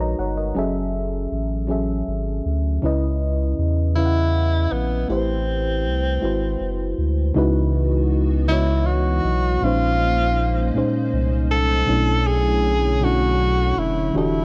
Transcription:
Already playing: A#1 G#3 D#4 F#4 A#4 B4 C#5
0.00 D#5 A#5
0.19 G1 C#5 F#5
0.37 A#4 D#5
0.55 F#1 F#3 C#4 G#4 A4
0.59 E5
1.32 A1
1.68 F#3 C#4 G#4 A4 E5
2.08 G#1
2.46 D2
2.82 C#2 C#3 C#4 E4 B4 D#5
3.59 E2
3.95 C#3 C#4 E4 B4 F5
4.05 F#5
4.72 A#1 B3
5.08 A1 A3 C4 E4 G4 B4 C5
5.85 C2
6.22 G#1 G#3 E4 F#4 B4 C5
6.61 F#1
6.98 D2
7.35 C#2 C#3 E3 G#3 B3 D#4 E4 F#4 B4 D#5
8.48 C#3 G#3 E4 F#4 D#5
8.52 C#5
8.86 F#4
9.25 B1
9.61 A#1 A#2 G#3 A#3 C#4 D#4 F4 C5
9.66 C5
10.74 C2 A#2 G#3 C#4 D#4 C5
11.13 C2
11.52 A4
11.87 B1 B2 D3 F#3 A3 C#4 D4 E4 C#5
12.27 G#4
13.00 B2 F#3 C#4 D4 E4
13.04 F#4 A4
13.78 F1 E4
14.14 E1 E3 G3 D4 F#4 G4 F#5
14.18 E4 A4

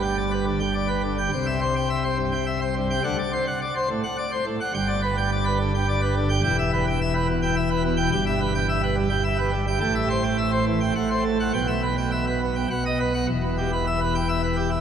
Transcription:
Already playing: G1 G2
0.03 G5
0.18 D5
0.32 B4
0.46 D3
0.60 G5
0.74 D5
0.88 B4
1.03 D3
1.18 G5
1.32 C2 C3 G5
1.47 E5
1.61 C5
1.76 G5
1.90 E5
2.04 C5
2.17 G2
2.32 G5
2.47 E5
2.61 C5
2.76 G2
2.90 G5
3.04 D2 D3 F#5
3.19 D5
3.33 C5
3.47 F#5
3.62 D5
3.76 C5
3.90 A2
4.04 F#5
4.18 D5
4.32 C5
4.46 A2
4.61 F#5
4.74 G1 G2 G5
4.88 D5
5.03 B4
5.17 G5
5.32 D5
5.45 B4
5.60 D3
5.75 G5
5.89 D5
6.02 B4
6.16 D3
6.29 G5
6.43 E1 E2 G5
6.59 E5
6.73 B4
6.87 G5
7.01 E5
7.15 B4
7.29 B2
7.43 G5
7.56 E5
7.70 B4
7.84 B2
7.97 G5
8.12 G1 G2 G5
8.27 E5
8.40 B4
8.55 G5
8.69 E5
8.83 B4
8.96 G3
9.10 G5
9.24 E5
9.38 B4
9.52 G3
9.67 G5
9.80 A1 A2 G5
9.95 E5
10.10 C5
10.23 G5
10.38 E5
10.52 C5
10.67 E3
10.81 G5
10.96 A1 A2 F#5
11.10 C5
11.24 A3
11.40 F#5
11.54 B1 B2 G5
11.68 E5
11.83 B4
11.98 G5
12.12 E5
12.27 B4
12.42 B3
12.56 G5
12.70 B1 B2 F#5
12.86 D#5
13.00 B4
13.14 F#5
13.28 E1 E2
13.43 B2
13.58 G4
13.73 B4
13.87 E5
14.01 B4
14.15 G5
14.29 E5
14.43 B4
14.57 G4
14.71 E4

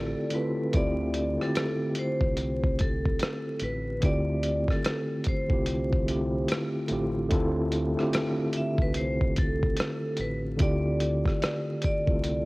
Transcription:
Already playing: A1 D3 A3 C4 E4 F4 G4 A4 D5
0.30 D3 A3 C4 E4, closed hi-hat
0.34 F4 A4 B4
0.71 D2 D3 A3 C4 E4, kick, closed hi-hat
0.75 F4 G4 D5
1.14 closed hi-hat
1.36 D3 A3 C4 E4
1.40 F4 G4 A4, cross-stick
1.56 cross-stick, closed hi-hat
1.95 C5, closed hi-hat
2.21 C2, kick
2.37 closed hi-hat
2.64 kick
2.79 A4, kick, closed hi-hat
3.06 kick
3.19 cross-stick, closed hi-hat
3.60 A1, closed hi-hat
3.64 B4
4.00 D2 D3 A3 C4 E4, kick, closed hi-hat
4.05 F4 G4 D5
4.43 closed hi-hat
4.68 A4, kick, cross-stick
4.84 cross-stick, closed hi-hat
5.24 kick, closed hi-hat
5.28 C5
5.48 C2 D3 A3 C4 E4, kick
5.52 F4 G4
5.66 closed hi-hat
5.93 kick
6.05 D3 A3 C4 E4, closed hi-hat
6.09 F4 G4
6.48 cross-stick, closed hi-hat
6.88 A1 D3 A3 C4 E4, closed hi-hat
6.92 F4 G4
7.28 D2 D3 A3 C4 E4 F4, kick, closed hi-hat
7.33 A4
7.72 closed hi-hat
7.95 D3 A3 C4 E4, cross-stick
7.99 F4 G4
8.13 cross-stick, closed hi-hat
8.53 E5, closed hi-hat
8.78 C2 B4, kick
8.94 C5, closed hi-hat
9.21 kick
9.36 A4, kick, closed hi-hat
9.63 kick
9.77 cross-stick, closed hi-hat
10.17 A1 B4, closed hi-hat
10.57 D2 D3 A3 C4 E4, kick, closed hi-hat
10.61 F4 G4 D5
11.00 closed hi-hat
11.25 kick, cross-stick
11.42 cross-stick, closed hi-hat
11.82 D5, kick, closed hi-hat
12.06 C2 D3 A3 C4 E4, kick
12.10 F4 A4
12.24 closed hi-hat

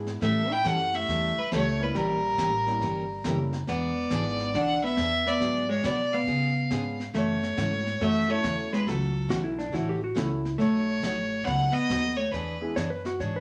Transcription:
Already playing: G#2 G#3 B3 D4 E4 G#4
0.06 snare
0.20 A2 E3 G3 A3 C#4 E4 A4 E5, brush sweep, kick, snare
0.51 E4 G5
0.64 F#2 E3 G3 A3 C#4 E4 G4 A4 F#5, kick, snare, hi-hat pedal
0.93 A3 E5, snare
1.08 E2 E3 G3 C#4 E4 A4, brush sweep, kick, snare
1.37 G3 B4, muted upright bass stroke
1.51 C#2 E3 G3 A3 C#4 E4 A4 C#5, kick, snare, hi-hat pedal
1.80 G3 A#3 C#4 E4 A#4 B4
1.94 A#1 E3 G3 A#3 C#4 G4 A#4, brush sweep, kick, snare
2.37 A1 E3 A#3 C#4 G4 A#4, kick, snare, hi-hat pedal
2.66 G3 A#3 C#4 E4 G4, snare
2.81 G1 E3 A#3 C#4 G4 A#4, brush sweep, kick, snare
3.24 F#1 E3 G3 A#3 C#4 E4 G4 A4 A#4, kick, snare, hi-hat pedal
3.52 snare
3.67 E1 E3 B3 D4 G#4 D5, brush sweep, kick, snare
4.10 G#1 E3 G#3 B3 D4 E4 G#4, kick, snare, hi-hat pedal
4.39 snare
4.54 B1 E3 B3 D4 G#4 F#5, brush sweep, kick, snare
4.84 B3 E5
4.97 E2 E3 B3 D4 G#4, kick, snare, hi-hat pedal
5.26 B3 D5, snare
5.40 G#2 D3 F#3 B3 F#4 G#4, brush sweep, kick, snare
5.69 G#3 C#5
5.83 B2 D3 F#3 B3 F#4 G#4 D5, kick, snare, hi-hat pedal
6.13 B3 F5
6.27 C#3 G#3 B3 F4 G#4, brush sweep, kick, snare
6.70 G#2 C#3 G#3 B3 C#4 D4 F4 G#4, kick, snare, hi-hat pedal
7.00 snare
7.13 F#2 C#3 E3 A3 C#4 F#4 C#5, brush sweep, kick, snare
7.43 snare
7.56 G#2 C#3 E3 A3 C#4 E4 F#4 A4, kick, snare, hi-hat pedal
7.86 snare
8.00 F#2 C#3 E3 A3 C#4 F#4 E5, brush sweep, kick, snare
8.28 A3 C#4 E4 F#4 A4 C#5
8.43 E2 C#3 E3 A3 C#4 F#4, kick, snare, hi-hat pedal
8.73 G#3 B4, snare
8.86 C#2 C#3 E3 F#3 A3 C#4 F#4 A4, brush sweep, kick, snare
9.29 B1 C#3 E3 A3 C#4 F#4, kick, snare, hi-hat pedal
9.44 E4
9.59 D4, snare
9.72 A1 C#3 E3 A3 C#4 E4 F#4 A4, brush sweep, kick, snare
9.89 G4
10.04 F#4
10.15 C#2 C#3 E3 A3 C#4 E4 F#4 A4, kick, snare, hi-hat pedal
10.45 snare
10.58 B1 B2 F#3 A3 D#4 F#4 C#5, brush sweep, kick, snare
11.02 A1 B2 F#3 A3 D#4 F#4, kick, snare, hi-hat pedal
11.44 C#2 B2 F#3 A3 B3 D#4 F#4 F#5, brush sweep, kick, snare
11.72 B3 D#5
11.89 D#2 B2 F#3 A3 D#4 F#4, kick, snare, hi-hat pedal
12.16 A3 C#5
12.31 E2 E3 B3 D4 G#4 B4, brush sweep, kick, snare
12.61 G#3 B3 D4 E4 G#4
12.76 F#2 E3 B3 D4 G#4 C#5, kick, snare, hi-hat pedal
12.90 B4
13.05 F#4, snare
13.20 G#2 E3 B3 D4 G#4 C#5, brush sweep, kick, snare
13.36 B4

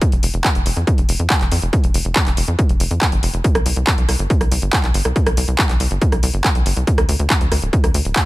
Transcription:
0.02 kick, closed hi-hat
0.12 F1, closed hi-hat
0.23 F1, open hi-hat
0.34 F1, closed hi-hat
0.44 kick, clap, closed hi-hat
0.55 F1, closed hi-hat
0.66 F1, open hi-hat
0.77 F2, closed hi-hat
0.87 kick, closed hi-hat
0.98 F1, closed hi-hat
1.09 F1, open hi-hat
1.19 F2, closed hi-hat
1.30 kick, clap, closed hi-hat
1.41 F1, clap, closed hi-hat
1.52 F2, open hi-hat
1.62 F1, closed hi-hat
1.73 kick, closed hi-hat
1.84 F1, closed hi-hat
1.94 F1, open hi-hat
2.05 F1, closed hi-hat
2.16 kick, clap, closed hi-hat
2.26 F1, clap, closed hi-hat
2.37 F1, open hi-hat
2.48 F2, closed hi-hat
2.59 kick, closed hi-hat
2.69 F1, closed hi-hat
2.80 F1, open hi-hat
2.91 F2, closed hi-hat
3.02 kick, clap, closed hi-hat
3.12 G1, closed hi-hat
3.23 F1, open hi-hat
3.34 F1, closed hi-hat
3.44 kick, closed hi-hat
3.55 C2, cross-stick, closed hi-hat
3.66 C2, open hi-hat
3.76 C2, closed hi-hat
3.87 kick, clap, closed hi-hat
3.98 C2, closed hi-hat
4.08 C2, cross-stick, open hi-hat
4.19 G1, closed hi-hat
4.30 kick, closed hi-hat
4.41 C2, cross-stick, closed hi-hat
4.51 C2, open hi-hat
4.62 G1, closed hi-hat
4.73 kick, clap, closed hi-hat
4.84 C2, clap, closed hi-hat
4.94 G1, open hi-hat
5.05 C2, cross-stick, closed hi-hat
5.16 kick, closed hi-hat
5.26 C2, cross-stick, closed hi-hat
5.37 C2, open hi-hat
5.48 C2, closed hi-hat
5.59 kick, clap, closed hi-hat
5.69 C2, clap, closed hi-hat
5.80 C2, open hi-hat
5.91 G1, closed hi-hat
6.01 kick, closed hi-hat
6.12 C2, cross-stick, closed hi-hat
6.23 C2, open hi-hat
6.34 G1, closed hi-hat
6.44 kick, clap, closed hi-hat
6.55 C2, closed hi-hat
6.66 G1, open hi-hat
6.76 C2, closed hi-hat
6.87 kick, closed hi-hat
6.98 D2, cross-stick, closed hi-hat
7.09 D2, open hi-hat
7.19 D2, closed hi-hat
7.30 kick, clap, closed hi-hat
7.41 D2, closed hi-hat
7.52 D2, cross-stick, open hi-hat
7.62 D1, closed hi-hat
7.73 kick, closed hi-hat
7.84 D2, cross-stick, closed hi-hat
7.94 D2, open hi-hat
8.05 D1, closed hi-hat
8.16 kick, clap, closed hi-hat

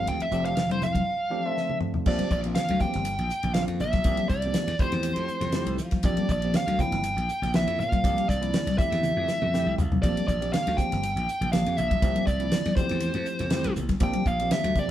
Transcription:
Already playing: F3 A3 C4 D4 G4
0.07 D2 G5, ride
0.20 E5, muted slap bass stroke, ride
0.31 F1 F3 A3 C4 D4 G4, hi-hat pedal
0.45 F5, ride
0.57 D4 A4, snare, ride
0.69 F3 A3 C4 D4 E4 C5, ride, high conga
0.82 F5, hi-hat pedal, low conga
0.94 kick, ride, high conga
1.07 G4
1.30 F3 A3 C4 D4 G4
1.45 F3 A3 C4 D4 F4 E5
1.57 snare
1.70 high tom
1.81 mid tom
1.94 floor tom
2.06 A#1 F3 A#3 C4 D4 G4 D5, kick, crash
2.19 ride, high conga
2.30 A#1 D4 A4 D5, kick, hi-hat pedal
2.44 F3 A#3 C4 D4 F4, ride
2.55 F5, snare, hi-hat pedal, ride
2.68 D2 D4 G4, ride, high conga
2.79 F3 A#3 C4 D4 G4 G5, muted slap bass stroke, kick, hi-hat pedal, low conga
2.94 G1, snare, ride
3.05 D4, hi-hat pedal, ride
3.19 A#1, ride
3.30 hi-hat pedal
3.43 A#1, ride, low conga
3.54 F3 A#3 C4 F4 F5, snare, hi-hat pedal, ride
3.58 D4
3.68 F2, ride
3.80 A#1 E5, hi-hat pedal, low conga
3.93 kick, snare, ride, high conga
4.04 C2 F3 A#3 C4 D4 G4, kick, hi-hat pedal, ride
4.17 ride, high conga
4.29 C2 D4 D5, kick, hi-hat pedal
4.33 G4
4.42 F3 A#3 C4 D4 G4, ride
4.54 snare, hi-hat pedal, ride
4.67 E2, snare, ride
4.72 G4
4.79 F3 A3 C4 E4 G4 C5, kick, hi-hat pedal, low conga
4.92 E2, snare, ride
5.03 hi-hat pedal, ride
5.16 F2, ride
5.28 hi-hat pedal
5.41 F2, snare, ride, low conga
5.52 F3 A3 C4 E4 G4, snare, hi-hat pedal, ride
5.66 C2, ride
5.78 F3 E4 A4, hi-hat pedal
5.91 kick, snare, ride, high conga
6.03 A#1 F3 A#3 C4 D4 G4 D5, kick, hi-hat pedal, ride
6.17 ride, high conga
6.29 A#1 D5, kick, hi-hat pedal
6.42 F3 A#3 C4 D4 G4, ride
6.54 F5, snare, hi-hat pedal, ride
6.67 D2 D4, ride, high conga
6.79 F3 A#3 C4 D4 E4 G5, muted slap bass stroke, kick, hi-hat pedal, low conga
6.92 G1, snare, ride
7.04 D4 F4, hi-hat pedal, ride
7.16 A#1, ride
7.29 hi-hat pedal
7.42 A#1, snare, ride, low conga
7.54 F3 A#3 C4 D4 E4 E5, snare, hi-hat pedal, ride
7.67 F2, ride
7.79 A#2 D4 G4 F5, hi-hat pedal, low conga
7.92 kick, ride, high conga
8.03 C2 F3 A#3 C4 D4 G4, kick, hi-hat pedal, ride
8.16 ride, high conga
8.28 C2 D4 E4 D5, kick, hi-hat pedal
8.41 F3 A#3 C4 D4 E4, ride
8.54 snare, hi-hat pedal, ride
8.66 C2 D4 G4, snare, ride, high conga
8.77 F3 A3 C4 E4 G4 E5, muted slap bass stroke, kick, hi-hat pedal, low conga
8.92 E2, snare, ride
9.03 hi-hat pedal, high tom
9.17 F2
9.28 snare, hi-hat pedal
9.42 F2, mid tom, low conga
9.54 F3 A3 C4 E4 G4 G5, snare, hi-hat pedal
9.66 C2
9.78 C2 E4 A4 F5, floor tom, hi-hat pedal, high conga, low conga
9.92 floor tom, high conga
10.02 A#1 F3 A#3 C4 D4 G4 D5, kick, hi-hat pedal, ride
10.17 ride, high conga
10.28 A#1 D4 G4 D5, kick, hi-hat pedal
10.41 F3 A#3 C4 D4 G4, ride
10.53 F5, snare, hi-hat pedal, ride
10.67 D2 D4 A4, snare, ride, high conga
10.77 F3 A#3 C4 D4 G4 G5, muted slap bass stroke, kick, hi-hat pedal, low conga
10.92 G1, snare, ride
11.03 D4 G4, hi-hat pedal, ride
11.16 A#1, ride
11.29 hi-hat pedal
11.41 A#1, ride, low conga
11.52 F3 A#3 C4 D4 G4 F5, snare, hi-hat pedal, ride
11.66 F2, ride
11.77 A#1 D4 A4 E5, hi-hat pedal, low conga
11.91 kick, ride, high conga
12.02 C2 F3 A#3 C4 D4 G4, kick, hi-hat pedal, ride
12.15 ride, high conga
12.27 C2 D4 D5, kick, hi-hat pedal
12.40 F3 A#3 C4 D4 E4, ride
12.52 snare, hi-hat pedal, ride
12.65 E2 G4, snare, ride, high conga
12.75 F3 A3 C4 E4 G4 C5, kick, hi-hat pedal, low conga
12.89 E2, snare, ride
13.00 hi-hat pedal, ride
13.14 F2, ride
13.25 hi-hat pedal
13.39 F2, snare, ride, low conga
13.50 F3 A3 C4 E4 G4, snare, hi-hat pedal, ride
13.64 C2, ride
13.76 C2 E4 A4, hi-hat pedal, low conga
13.89 kick, snare, ride, high conga
14.00 A#1 F3 A#3 C4 D4 G4 G5, kick, hi-hat pedal, ride
14.13 ride, high conga
14.26 A#1 D4 G4 F5, kick, hi-hat pedal
14.40 F3 A#3 C4 D4 G4, ride
14.51 E5, snare, hi-hat pedal, ride
14.64 D2 D4 A#4, ride, high conga
14.76 F3 A#3 C4 D4 G4 D5, muted slap bass stroke, kick, hi-hat pedal, low conga

